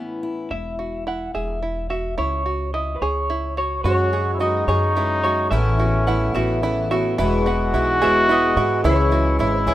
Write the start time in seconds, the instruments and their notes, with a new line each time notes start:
Already playing: steel-string acoustic guitar A2 E3 B3 C#4 E4
0.23 steel-string acoustic guitar E4
0.50 upright bass E1, five-string banjo E4, clean electric guitar E5
0.79 five-string banjo F#4
1.07 five-string banjo E4, clean electric guitar F#5
1.34 upright bass E1, five-string banjo G#4, clean electric guitar E5
1.63 five-string banjo E4
1.90 five-string banjo F#4, clean electric guitar E5
2.18 upright bass C#2, five-string banjo E4, clean electric guitar C#5
2.46 five-string banjo F#4
2.74 five-string banjo E4, clean electric guitar D#5
2.96 clean electric guitar B4
3.01 upright bass C#2, five-string banjo G#4, clean electric guitar C#5
3.30 five-string banjo E4
3.57 five-string banjo F#4, clean electric guitar C#5
3.84 grand piano F#1 F#2 G#3 C#4 F#4 C#5, upright bass F#2, harmonium C#3 F#3 G#3 F#4, twelve-string acoustic guitar F#3 G#3 C#4 F#4, trombone F#4, five-string banjo F#4, clean electric guitar C#5
4.12 grand piano G#3 C#4 F#4 G#4, twelve-string acoustic guitar G#3 C#4 F#4, five-string banjo G#4
4.34 trombone E4
4.39 twelve-string acoustic guitar F#3 G#3 C#4 F#4, grand piano G#3 C#4 F#4 B4, trombone D#4, five-string banjo F#4, clean electric guitar D#5
4.68 upright bass F#2, twelve-string acoustic guitar F#3 G#3 C#4 F#4, grand piano G#3 C#4 F#4 C#5, five-string banjo G#4, clean electric guitar C#5
4.96 twelve-string acoustic guitar F#3 G#3 C#4 F#4, grand piano G#3 C#4 F#4 B4, five-string banjo E4
5.23 grand piano G#3 C#4 F#4 E5, twelve-string acoustic guitar G#3 C#4 F#4, five-string banjo F#4, clean electric guitar C#5
5.51 upright bass A1, grand piano A1 A2 A3 C#4 E4 B4, twelve-string acoustic guitar A2 E3 B3 C#4 E4, harmonium A3 B3 E4, trombone C#4, five-string banjo E4, clean electric guitar E5
5.79 grand piano A3 C#4 E4 F#4, twelve-string acoustic guitar B3 C#4 E4, five-string banjo F#4
6.07 twelve-string acoustic guitar E3 B3 C#4 E4, grand piano A3 C#4 E4 B4, five-string banjo E4, clean electric guitar F#5
6.34 upright bass A1, twelve-string acoustic guitar A2 E3 B3 C#4 E4, grand piano A3 C#4 E4 B4, five-string banjo F#4, clean electric guitar E5
6.63 twelve-string acoustic guitar E3 B3 C#4 E4, grand piano A3 C#4 E4 B4, five-string banjo E4
6.91 grand piano A3 C#4 E4 B4, twelve-string acoustic guitar B3 C#4 E4, five-string banjo F#4, clean electric guitar E5
7.18 upright bass E1, twelve-string acoustic guitar E2 B2 F#3 G#3 B3 E4, grand piano E2 E3 G#3 B3 E4 F#4 B4, harmonium E3 G#3 B3 F#4, five-string banjo E4, trombone F#4, clean electric guitar B4
7.46 grand piano G#3 B3 E4 F#4 B4, twelve-string acoustic guitar G#3 B3 E4, five-string banjo F#4, clean electric guitar F#5
7.74 upright bass B1, twelve-string acoustic guitar F#3 G#3 B3 E4, grand piano G#3 B3 E4 F#4 G#4, five-string banjo E4
8.01 upright bass E1, twelve-string acoustic guitar E2 B2 F#3 G#3 B3 E4, grand piano G#3 B3 E4 F#4 C#5, five-string banjo G#4, clean electric guitar E5
8.28 twelve-string acoustic guitar F#3 G#3 B3, grand piano G#3 B3 E4 F#4 B4, five-string banjo E4
8.32 clean electric guitar D#5
8.56 upright bass G#2, twelve-string acoustic guitar F#3 G#3 B3 E4, grand piano G#3 B3 E4 F#4 B4, five-string banjo F#4
8.83 grand piano C#2 C#3 G#3 C#4 E4 C#5 E5, upright bass C#2, twelve-string acoustic guitar C#3 E3 G#3 C#4 E4, harmonium C#3 E4, trombone E4, five-string banjo E4, clean electric guitar C#5
9.11 grand piano G#3 C#4 E4 C#5 E5, twelve-string acoustic guitar G#3 C#4 E4, five-string banjo F#4
9.39 upright bass G#1, twelve-string acoustic guitar E3 G#3 C#4 E4, grand piano G#3 C#4 E4 C#5 E5, trombone E4, five-string banjo E4
9.59 clean electric guitar B4
9.66 upright bass C#2, twelve-string acoustic guitar C#3 E3 G#3 C#4 E4, grand piano G#3 C#4 E4 C#5 E5, five-string banjo G#4